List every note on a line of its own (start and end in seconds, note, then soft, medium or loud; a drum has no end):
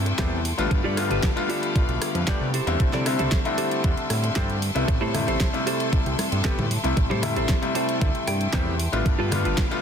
0.00 0.13 G2 medium
0.00 0.15 C3 medium
0.00 0.16 G3 medium
0.00 0.16 A3 medium
0.00 0.16 E4 medium
0.00 2.49 A4 medium
0.00 0.67 E5 medium
0.00 4.84 G5 medium
0.00 0.67 C6 medium
0.06 muted clean electric guitar stroke soft
0.06 closed hi-hat medium
0.18 0.53 E2 loud
0.18 0.38 C3 loud
0.18 0.38 G3 medium
0.18 0.38 A3 medium
0.18 0.38 B3 medium
0.18 0.38 E4 medium
0.18 0.39 G4 medium
0.18 0.38 G4 loud
0.18 0.39 A4 medium
0.18 0.39 C5 loud
0.18 kick loud
0.18 snare loud
0.18 closed hi-hat medium
0.45 open hi-hat loud
0.58 0.68 A1 medium
0.58 0.94 D3 loud
0.58 0.94 G3 medium
0.58 0.94 A3 medium
0.58 0.94 B3 medium
0.58 0.94 F4 loud
0.58 muted clean electric guitar stroke soft
0.58 closed hi-hat medium
0.71 0.81 G1 loud
0.71 2.52 F5 medium
0.71 2.52 B5 medium
0.71 muted clean electric guitar stroke loud
0.71 kick loud
0.71 closed hi-hat medium
0.84 1.12 G2 medium
0.84 0.97 F4 loud
0.84 0.97 G4 loud
0.84 0.97 A4 medium
0.84 0.98 D5 loud
0.97 1.33 D3 medium
0.97 1.33 G3 medium
0.97 1.33 A3 medium
0.97 1.34 B3 medium
0.97 1.34 F4 loud
0.97 cross-stick medium
0.97 open hi-hat loud
1.10 1.20 G1 medium
1.10 1.30 F4 medium
1.10 1.30 G4 medium
1.10 1.30 A4 medium
1.10 1.30 B4 loud
1.10 closed hi-hat medium
1.23 kick loud
1.23 snare loud
1.23 closed hi-hat medium
1.36 1.72 D3 loud
1.36 1.72 G3 medium
1.36 1.72 A3 medium
1.36 1.72 B3 medium
1.36 1.73 F4 loud
1.36 closed hi-hat soft
1.49 1.82 F4 medium
1.49 1.82 G4 medium
1.49 1.82 A4 medium
1.49 1.83 D5 loud
1.49 open hi-hat loud
1.63 closed hi-hat medium
1.75 1.86 B1 soft
1.75 2.24 D3 medium
1.75 2.25 G3 medium
1.75 2.25 A3 medium
1.75 2.25 B3 medium
1.75 2.25 F4 medium
1.75 kick loud
1.75 closed hi-hat medium
1.89 1.99 B1 loud
1.89 closed hi-hat soft
2.02 cross-stick medium
2.02 open hi-hat loud
2.15 2.25 F2 medium
2.15 muted clean electric guitar stroke soft
2.15 closed hi-hat medium
2.27 2.47 D3 loud
2.27 2.47 G3 medium
2.27 2.47 A3 medium
2.27 2.47 B3 medium
2.27 2.47 F4 medium
2.27 2.47 G4 medium
2.27 2.47 G4 loud
2.27 2.48 A4 medium
2.27 2.48 D5 loud
2.27 kick loud
2.27 snare loud
2.27 closed hi-hat medium
2.41 2.61 C3 medium
2.53 2.85 E4 medium
2.53 2.85 G4 medium
2.53 9.02 A4 medium
2.53 2.85 A4 medium
2.53 2.86 C5 medium
2.53 9.02 E5 medium
2.53 9.02 C6 medium
2.53 open hi-hat loud
2.67 2.77 E2 loud
2.67 3.03 D3 loud
2.67 3.03 G3 medium
2.67 3.03 A3 medium
2.67 3.03 C4 medium
2.67 3.03 E4 loud
2.67 closed hi-hat medium
2.80 2.90 C2 loud
2.80 kick loud
2.80 closed hi-hat medium
2.93 3.21 C3 medium
2.93 3.06 E4 loud
2.93 3.06 G4 loud
2.93 3.06 A4 loud
2.93 3.06 D5 loud
2.93 snare soft
2.93 closed hi-hat soft
3.06 3.42 D3 medium
3.06 3.42 G3 medium
3.06 3.42 A3 medium
3.06 3.42 C4 medium
3.06 3.43 E4 loud
3.06 cross-stick medium
3.06 open hi-hat loud
3.19 3.29 C2 medium
3.19 3.38 E4 medium
3.19 3.39 G4 medium
3.19 3.39 A4 medium
3.19 3.39 C5 loud
3.19 closed hi-hat medium
3.32 kick loud
3.32 snare loud
3.32 closed hi-hat medium
3.45 3.81 D3 loud
3.45 3.81 G3 medium
3.45 3.81 A3 medium
3.45 3.81 C4 medium
3.45 3.81 E4 loud
3.45 closed hi-hat soft
3.58 3.91 E4 medium
3.58 3.91 G4 medium
3.58 3.91 A4 medium
3.58 3.91 C5 medium
3.58 open hi-hat loud
3.71 closed hi-hat medium
3.83 3.94 E2 medium
3.83 4.33 D3 medium
3.83 4.33 G3 medium
3.83 4.33 A3 medium
3.83 4.33 C4 medium
3.83 4.34 E4 medium
3.83 kick loud
3.83 closed hi-hat medium
3.98 closed hi-hat soft
4.10 4.30 A2 medium
4.10 cross-stick medium
4.10 open hi-hat loud
4.23 muted clean electric guitar stroke soft
4.23 closed hi-hat medium
4.36 4.71 G2 loud
4.36 4.55 D3 loud
4.36 4.55 G3 medium
4.36 4.56 A3 medium
4.36 4.56 C4 medium
4.36 4.56 E4 medium
4.36 4.56 G4 medium
4.36 4.56 G4 loud
4.36 4.56 A4 medium
4.36 4.56 C5 loud
4.36 kick loud
4.36 snare loud
4.36 closed hi-hat medium
4.50 closed hi-hat soft
4.62 open hi-hat loud
4.75 4.85 C2 medium
4.75 5.11 C3 medium
4.75 5.11 G3 medium
4.75 5.11 A3 medium
4.75 5.11 B3 medium
4.75 5.12 E4 loud
4.75 muted clean electric guitar stroke soft
4.75 closed hi-hat medium
4.88 4.99 A1 loud
4.88 9.82 G5 medium
4.88 muted clean electric guitar stroke loud
4.88 kick loud
4.88 closed hi-hat medium
5.01 5.29 A2 medium
5.01 5.14 E4 loud
5.01 5.14 G4 loud
5.01 5.14 A4 loud
5.01 5.15 C5 loud
5.14 5.51 C3 medium
5.14 5.51 G3 medium
5.14 5.51 A3 medium
5.14 5.51 E4 loud
5.14 cross-stick medium
5.14 open hi-hat loud
5.14 low conga medium
5.27 5.38 A1 medium
5.27 5.47 E4 medium
5.27 5.47 G4 medium
5.27 5.47 A4 medium
5.27 5.48 C5 loud
5.27 closed hi-hat medium
5.40 kick loud
5.40 snare loud
5.40 closed hi-hat medium
5.53 5.89 C3 loud
5.53 5.89 G3 medium
5.53 5.90 A3 medium
5.53 5.90 E4 loud
5.53 closed hi-hat soft
5.66 5.99 E4 medium
5.66 5.99 G4 medium
5.66 6.00 A4 medium
5.66 6.00 C5 loud
5.66 open hi-hat loud
5.80 closed hi-hat medium
5.92 6.04 C2 soft
5.92 6.41 C3 medium
5.92 6.42 G3 medium
5.92 6.42 A3 medium
5.92 6.42 E4 medium
5.92 kick loud
5.92 closed hi-hat medium
6.06 6.16 C2 loud
6.06 closed hi-hat soft
6.19 cross-stick medium
6.19 open hi-hat loud
6.19 high conga medium
6.32 6.42 G2 medium
6.32 muted clean electric guitar stroke soft
6.32 closed hi-hat medium
6.44 6.64 C3 loud
6.44 6.64 G3 medium
6.44 6.64 A3 medium
6.44 6.64 B3 medium
6.44 6.64 E4 medium
6.44 6.65 G4 medium
6.44 6.64 G4 loud
6.44 6.65 A4 medium
6.44 6.65 B4 medium
6.44 kick loud
6.44 snare loud
6.44 closed hi-hat medium
6.58 6.78 A2 medium
6.58 high conga loud
6.58 low conga loud
6.71 open hi-hat loud
6.83 6.94 C2 medium
6.83 7.20 C3 loud
6.83 7.20 G3 medium
6.83 7.20 A3 medium
6.83 7.20 E4 loud
6.83 muted clean electric guitar stroke soft
6.83 closed hi-hat medium
6.97 7.07 A1 loud
6.97 muted clean electric guitar stroke loud
6.97 kick loud
6.97 closed hi-hat medium
7.10 7.38 A2 medium
7.10 7.23 E4 loud
7.10 7.23 G4 loud
7.10 7.23 A4 medium
7.10 7.23 C5 loud
7.10 high conga medium
7.22 7.59 C3 medium
7.22 7.59 G3 medium
7.22 7.59 A3 medium
7.22 7.59 E4 loud
7.22 cross-stick medium
7.22 open hi-hat loud
7.22 low conga medium
7.36 7.46 A1 medium
7.36 7.56 E4 medium
7.36 7.56 G4 medium
7.36 7.56 A4 medium
7.36 7.56 C5 loud
7.36 closed hi-hat medium
7.49 kick loud
7.49 snare loud
7.49 closed hi-hat medium
7.62 7.98 C3 loud
7.62 7.98 G3 medium
7.62 7.98 A3 medium
7.62 7.99 E4 loud
7.62 closed hi-hat soft
7.75 8.08 E4 medium
7.75 8.08 G4 medium
7.75 8.08 A4 medium
7.75 8.08 C5 loud
7.75 open hi-hat loud
7.89 closed hi-hat medium
8.00 8.12 D2 medium
8.00 8.50 C3 medium
8.00 8.50 G3 medium
8.00 8.50 A3 medium
8.00 8.51 E4 medium
8.00 kick loud
8.00 closed hi-hat medium
8.15 closed hi-hat soft
8.27 8.48 G2 medium
8.27 8.52 G5 medium
8.27 cross-stick medium
8.27 open hi-hat loud
8.40 muted clean electric guitar stroke soft
8.40 closed hi-hat medium
8.53 8.88 E2 loud
8.53 8.73 C3 loud
8.53 8.73 G3 medium
8.53 8.73 A3 medium
8.53 8.73 B3 medium
8.53 8.73 E4 medium
8.53 8.73 G4 medium
8.53 8.73 G4 loud
8.53 8.74 A4 medium
8.53 8.74 C5 loud
8.53 9.02 E5 medium
8.53 kick loud
8.53 snare loud
8.53 closed hi-hat medium
8.80 open hi-hat loud
8.92 9.03 A1 medium
8.92 9.29 D3 loud
8.92 9.29 G3 medium
8.92 9.29 A3 medium
8.92 9.29 B3 medium
8.92 9.29 F4 loud
8.92 muted clean electric guitar stroke soft
8.92 closed hi-hat medium
9.05 9.16 G1 loud
9.05 9.82 A4 medium
9.05 9.82 F5 medium
9.05 9.82 B5 medium
9.05 muted clean electric guitar stroke loud
9.05 kick loud
9.05 closed hi-hat medium
9.19 9.47 G2 medium
9.19 9.32 F4 loud
9.19 9.32 G4 loud
9.19 9.32 A4 medium
9.19 9.32 B4 loud
9.32 9.68 D3 medium
9.32 9.68 G3 medium
9.32 9.68 A3 medium
9.32 9.68 B3 medium
9.32 9.69 F4 loud
9.32 cross-stick medium
9.32 open hi-hat loud
9.32 low conga medium
9.45 9.55 G1 medium
9.45 9.65 F4 medium
9.45 9.65 G4 medium
9.45 9.65 A4 medium
9.45 9.65 B4 loud
9.45 closed hi-hat medium
9.58 kick loud
9.58 snare loud
9.58 closed hi-hat medium
9.71 9.82 D3 loud
9.71 9.82 G3 medium
9.71 9.82 A3 medium
9.71 9.82 B3 medium
9.71 9.82 F4 loud
9.71 closed hi-hat soft